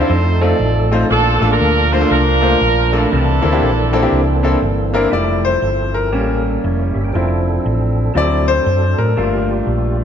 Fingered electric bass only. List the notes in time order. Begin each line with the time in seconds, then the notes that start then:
0.10 F2
0.60 A1
1.10 A#1
1.41 A1
1.61 D2
2.11 C2
2.61 A#1
3.12 C2
3.44 D2
3.63 A#1
4.12 C2
4.62 G1
5.12 F1
5.62 G1
6.13 A1
6.64 F1
6.95 G1
7.15 F1
7.66 A1
8.15 D2
8.66 F#2
8.98 A2
9.17 G1
9.67 A#1